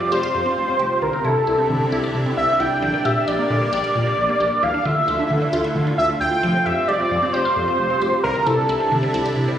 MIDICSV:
0, 0, Header, 1, 5, 480
1, 0, Start_track
1, 0, Tempo, 451128
1, 1086, Time_signature, 4, 2, 24, 8
1, 10199, End_track
2, 0, Start_track
2, 0, Title_t, "Analog synth lead"
2, 0, Program_c, 0, 81
2, 0, Note_on_c, 0, 74, 103
2, 119, Note_off_c, 0, 74, 0
2, 126, Note_on_c, 0, 72, 105
2, 1086, Note_on_c, 0, 70, 98
2, 1102, Note_off_c, 0, 72, 0
2, 1329, Note_on_c, 0, 69, 93
2, 1344, Note_off_c, 0, 70, 0
2, 2287, Note_off_c, 0, 69, 0
2, 2523, Note_on_c, 0, 76, 108
2, 2763, Note_on_c, 0, 79, 120
2, 2779, Note_off_c, 0, 76, 0
2, 3244, Note_on_c, 0, 76, 104
2, 3260, Note_off_c, 0, 79, 0
2, 3485, Note_on_c, 0, 74, 96
2, 3501, Note_off_c, 0, 76, 0
2, 3958, Note_off_c, 0, 74, 0
2, 3964, Note_on_c, 0, 74, 101
2, 4926, Note_on_c, 0, 77, 105
2, 4942, Note_off_c, 0, 74, 0
2, 5164, Note_on_c, 0, 76, 93
2, 5180, Note_off_c, 0, 77, 0
2, 6125, Note_off_c, 0, 76, 0
2, 6362, Note_on_c, 0, 76, 102
2, 6471, Note_off_c, 0, 76, 0
2, 6601, Note_on_c, 0, 79, 119
2, 7080, Note_on_c, 0, 76, 104
2, 7096, Note_off_c, 0, 79, 0
2, 7319, Note_on_c, 0, 74, 104
2, 7334, Note_off_c, 0, 76, 0
2, 7798, Note_on_c, 0, 72, 105
2, 7814, Note_off_c, 0, 74, 0
2, 8755, Note_off_c, 0, 72, 0
2, 8761, Note_on_c, 0, 70, 97
2, 9003, Note_on_c, 0, 69, 92
2, 9019, Note_off_c, 0, 70, 0
2, 9964, Note_off_c, 0, 69, 0
2, 10199, End_track
3, 0, Start_track
3, 0, Title_t, "Synth arpeggio sound"
3, 0, Program_c, 1, 84
3, 5, Note_on_c, 1, 60, 73
3, 68, Note_off_c, 1, 60, 0
3, 127, Note_on_c, 1, 67, 92
3, 189, Note_off_c, 1, 67, 0
3, 248, Note_on_c, 1, 77, 79
3, 310, Note_off_c, 1, 77, 0
3, 486, Note_on_c, 1, 60, 77
3, 548, Note_off_c, 1, 60, 0
3, 725, Note_on_c, 1, 60, 73
3, 787, Note_off_c, 1, 60, 0
3, 844, Note_on_c, 1, 67, 84
3, 907, Note_off_c, 1, 67, 0
3, 1084, Note_on_c, 1, 50, 90
3, 1147, Note_off_c, 1, 50, 0
3, 1204, Note_on_c, 1, 60, 77
3, 1267, Note_off_c, 1, 60, 0
3, 1325, Note_on_c, 1, 64, 83
3, 1388, Note_off_c, 1, 64, 0
3, 1565, Note_on_c, 1, 64, 88
3, 1628, Note_off_c, 1, 64, 0
3, 1685, Note_on_c, 1, 60, 72
3, 1747, Note_off_c, 1, 60, 0
3, 1807, Note_on_c, 1, 50, 76
3, 1869, Note_off_c, 1, 50, 0
3, 1925, Note_on_c, 1, 60, 74
3, 1987, Note_off_c, 1, 60, 0
3, 2045, Note_on_c, 1, 64, 95
3, 2108, Note_off_c, 1, 64, 0
3, 2166, Note_on_c, 1, 74, 79
3, 2228, Note_off_c, 1, 74, 0
3, 2407, Note_on_c, 1, 60, 74
3, 2469, Note_off_c, 1, 60, 0
3, 2646, Note_on_c, 1, 60, 70
3, 2708, Note_off_c, 1, 60, 0
3, 2766, Note_on_c, 1, 64, 84
3, 2828, Note_off_c, 1, 64, 0
3, 3005, Note_on_c, 1, 50, 93
3, 3068, Note_off_c, 1, 50, 0
3, 3126, Note_on_c, 1, 58, 77
3, 3188, Note_off_c, 1, 58, 0
3, 3247, Note_on_c, 1, 67, 82
3, 3309, Note_off_c, 1, 67, 0
3, 3486, Note_on_c, 1, 67, 87
3, 3548, Note_off_c, 1, 67, 0
3, 3606, Note_on_c, 1, 58, 70
3, 3669, Note_off_c, 1, 58, 0
3, 3727, Note_on_c, 1, 50, 76
3, 3789, Note_off_c, 1, 50, 0
3, 3847, Note_on_c, 1, 58, 76
3, 3909, Note_off_c, 1, 58, 0
3, 3965, Note_on_c, 1, 67, 96
3, 4028, Note_off_c, 1, 67, 0
3, 4086, Note_on_c, 1, 74, 78
3, 4148, Note_off_c, 1, 74, 0
3, 4326, Note_on_c, 1, 58, 73
3, 4389, Note_off_c, 1, 58, 0
3, 4565, Note_on_c, 1, 58, 73
3, 4627, Note_off_c, 1, 58, 0
3, 4685, Note_on_c, 1, 67, 81
3, 4747, Note_off_c, 1, 67, 0
3, 4924, Note_on_c, 1, 52, 93
3, 4987, Note_off_c, 1, 52, 0
3, 5045, Note_on_c, 1, 62, 76
3, 5107, Note_off_c, 1, 62, 0
3, 5164, Note_on_c, 1, 65, 83
3, 5227, Note_off_c, 1, 65, 0
3, 5404, Note_on_c, 1, 65, 89
3, 5467, Note_off_c, 1, 65, 0
3, 5525, Note_on_c, 1, 62, 69
3, 5587, Note_off_c, 1, 62, 0
3, 5644, Note_on_c, 1, 52, 77
3, 5707, Note_off_c, 1, 52, 0
3, 5764, Note_on_c, 1, 62, 75
3, 5826, Note_off_c, 1, 62, 0
3, 5884, Note_on_c, 1, 65, 97
3, 5946, Note_off_c, 1, 65, 0
3, 6004, Note_on_c, 1, 76, 75
3, 6067, Note_off_c, 1, 76, 0
3, 6244, Note_on_c, 1, 62, 75
3, 6307, Note_off_c, 1, 62, 0
3, 6486, Note_on_c, 1, 62, 73
3, 6548, Note_off_c, 1, 62, 0
3, 6605, Note_on_c, 1, 65, 84
3, 6668, Note_off_c, 1, 65, 0
3, 6843, Note_on_c, 1, 53, 97
3, 6906, Note_off_c, 1, 53, 0
3, 6965, Note_on_c, 1, 60, 73
3, 7027, Note_off_c, 1, 60, 0
3, 7086, Note_on_c, 1, 67, 83
3, 7148, Note_off_c, 1, 67, 0
3, 7327, Note_on_c, 1, 67, 89
3, 7389, Note_off_c, 1, 67, 0
3, 7446, Note_on_c, 1, 60, 75
3, 7508, Note_off_c, 1, 60, 0
3, 7568, Note_on_c, 1, 53, 78
3, 7630, Note_off_c, 1, 53, 0
3, 7687, Note_on_c, 1, 60, 77
3, 7749, Note_off_c, 1, 60, 0
3, 7807, Note_on_c, 1, 67, 97
3, 7869, Note_off_c, 1, 67, 0
3, 7928, Note_on_c, 1, 77, 76
3, 7990, Note_off_c, 1, 77, 0
3, 8168, Note_on_c, 1, 60, 74
3, 8230, Note_off_c, 1, 60, 0
3, 8408, Note_on_c, 1, 60, 73
3, 8470, Note_off_c, 1, 60, 0
3, 8529, Note_on_c, 1, 67, 85
3, 8590, Note_off_c, 1, 67, 0
3, 8767, Note_on_c, 1, 50, 95
3, 8829, Note_off_c, 1, 50, 0
3, 8889, Note_on_c, 1, 60, 73
3, 8951, Note_off_c, 1, 60, 0
3, 9008, Note_on_c, 1, 64, 84
3, 9069, Note_off_c, 1, 64, 0
3, 9247, Note_on_c, 1, 64, 85
3, 9309, Note_off_c, 1, 64, 0
3, 9366, Note_on_c, 1, 60, 74
3, 9429, Note_off_c, 1, 60, 0
3, 9488, Note_on_c, 1, 50, 78
3, 9550, Note_off_c, 1, 50, 0
3, 9607, Note_on_c, 1, 60, 76
3, 9669, Note_off_c, 1, 60, 0
3, 9726, Note_on_c, 1, 64, 95
3, 9788, Note_off_c, 1, 64, 0
3, 9848, Note_on_c, 1, 74, 80
3, 9910, Note_off_c, 1, 74, 0
3, 10087, Note_on_c, 1, 60, 74
3, 10149, Note_off_c, 1, 60, 0
3, 10199, End_track
4, 0, Start_track
4, 0, Title_t, "Analog synth pad"
4, 0, Program_c, 2, 89
4, 0, Note_on_c, 2, 55, 79
4, 0, Note_on_c, 2, 60, 74
4, 0, Note_on_c, 2, 65, 92
4, 1065, Note_off_c, 2, 55, 0
4, 1065, Note_off_c, 2, 60, 0
4, 1065, Note_off_c, 2, 65, 0
4, 1085, Note_on_c, 2, 64, 89
4, 1086, Note_on_c, 2, 55, 73
4, 1086, Note_on_c, 2, 62, 75
4, 1087, Note_on_c, 2, 48, 78
4, 2986, Note_off_c, 2, 64, 0
4, 2987, Note_off_c, 2, 48, 0
4, 2987, Note_off_c, 2, 55, 0
4, 3003, Note_on_c, 2, 55, 84
4, 3004, Note_on_c, 2, 58, 72
4, 4887, Note_off_c, 2, 62, 0
4, 4905, Note_off_c, 2, 55, 0
4, 4906, Note_off_c, 2, 58, 0
4, 4927, Note_on_c, 2, 50, 82
4, 4927, Note_on_c, 2, 57, 76
4, 4928, Note_on_c, 2, 64, 76
4, 4928, Note_on_c, 2, 65, 90
4, 6827, Note_off_c, 2, 50, 0
4, 6827, Note_off_c, 2, 57, 0
4, 6828, Note_off_c, 2, 64, 0
4, 6847, Note_on_c, 2, 55, 82
4, 6849, Note_on_c, 2, 60, 77
4, 8729, Note_off_c, 2, 65, 0
4, 8748, Note_off_c, 2, 60, 0
4, 8767, Note_on_c, 2, 48, 82
4, 8769, Note_on_c, 2, 62, 74
4, 8769, Note_on_c, 2, 64, 91
4, 10199, Note_off_c, 2, 48, 0
4, 10199, Note_off_c, 2, 55, 0
4, 10199, Note_off_c, 2, 62, 0
4, 10199, Note_off_c, 2, 64, 0
4, 10199, End_track
5, 0, Start_track
5, 0, Title_t, "Analog synth bass"
5, 0, Program_c, 3, 38
5, 126, Note_on_c, 3, 29, 102
5, 223, Note_off_c, 3, 29, 0
5, 367, Note_on_c, 3, 41, 100
5, 463, Note_off_c, 3, 41, 0
5, 608, Note_on_c, 3, 29, 103
5, 704, Note_off_c, 3, 29, 0
5, 845, Note_on_c, 3, 29, 100
5, 942, Note_off_c, 3, 29, 0
5, 1084, Note_on_c, 3, 36, 109
5, 1182, Note_off_c, 3, 36, 0
5, 1325, Note_on_c, 3, 48, 86
5, 1422, Note_off_c, 3, 48, 0
5, 1565, Note_on_c, 3, 36, 95
5, 1662, Note_off_c, 3, 36, 0
5, 1806, Note_on_c, 3, 48, 98
5, 1903, Note_off_c, 3, 48, 0
5, 2045, Note_on_c, 3, 36, 105
5, 2142, Note_off_c, 3, 36, 0
5, 2285, Note_on_c, 3, 48, 96
5, 2382, Note_off_c, 3, 48, 0
5, 2525, Note_on_c, 3, 36, 106
5, 2622, Note_off_c, 3, 36, 0
5, 2766, Note_on_c, 3, 36, 107
5, 2863, Note_off_c, 3, 36, 0
5, 3006, Note_on_c, 3, 34, 102
5, 3103, Note_off_c, 3, 34, 0
5, 3244, Note_on_c, 3, 46, 93
5, 3342, Note_off_c, 3, 46, 0
5, 3485, Note_on_c, 3, 34, 97
5, 3582, Note_off_c, 3, 34, 0
5, 3724, Note_on_c, 3, 46, 103
5, 3822, Note_off_c, 3, 46, 0
5, 3963, Note_on_c, 3, 34, 104
5, 4061, Note_off_c, 3, 34, 0
5, 4205, Note_on_c, 3, 46, 100
5, 4302, Note_off_c, 3, 46, 0
5, 4446, Note_on_c, 3, 34, 104
5, 4543, Note_off_c, 3, 34, 0
5, 4685, Note_on_c, 3, 34, 94
5, 4782, Note_off_c, 3, 34, 0
5, 4924, Note_on_c, 3, 38, 104
5, 5022, Note_off_c, 3, 38, 0
5, 5165, Note_on_c, 3, 50, 109
5, 5262, Note_off_c, 3, 50, 0
5, 5405, Note_on_c, 3, 38, 98
5, 5502, Note_off_c, 3, 38, 0
5, 5645, Note_on_c, 3, 50, 89
5, 5742, Note_off_c, 3, 50, 0
5, 5884, Note_on_c, 3, 38, 107
5, 5982, Note_off_c, 3, 38, 0
5, 6123, Note_on_c, 3, 50, 109
5, 6221, Note_off_c, 3, 50, 0
5, 6364, Note_on_c, 3, 38, 104
5, 6462, Note_off_c, 3, 38, 0
5, 6605, Note_on_c, 3, 38, 93
5, 6702, Note_off_c, 3, 38, 0
5, 6846, Note_on_c, 3, 29, 109
5, 6943, Note_off_c, 3, 29, 0
5, 7084, Note_on_c, 3, 41, 101
5, 7182, Note_off_c, 3, 41, 0
5, 7323, Note_on_c, 3, 29, 99
5, 7421, Note_off_c, 3, 29, 0
5, 7564, Note_on_c, 3, 41, 102
5, 7661, Note_off_c, 3, 41, 0
5, 7805, Note_on_c, 3, 29, 100
5, 7902, Note_off_c, 3, 29, 0
5, 8046, Note_on_c, 3, 41, 98
5, 8143, Note_off_c, 3, 41, 0
5, 8286, Note_on_c, 3, 29, 103
5, 8383, Note_off_c, 3, 29, 0
5, 8526, Note_on_c, 3, 29, 101
5, 8623, Note_off_c, 3, 29, 0
5, 8768, Note_on_c, 3, 36, 106
5, 8864, Note_off_c, 3, 36, 0
5, 9007, Note_on_c, 3, 48, 91
5, 9103, Note_off_c, 3, 48, 0
5, 9246, Note_on_c, 3, 36, 98
5, 9343, Note_off_c, 3, 36, 0
5, 9488, Note_on_c, 3, 48, 100
5, 9584, Note_off_c, 3, 48, 0
5, 9727, Note_on_c, 3, 36, 109
5, 9824, Note_off_c, 3, 36, 0
5, 9966, Note_on_c, 3, 48, 95
5, 10063, Note_off_c, 3, 48, 0
5, 10199, End_track
0, 0, End_of_file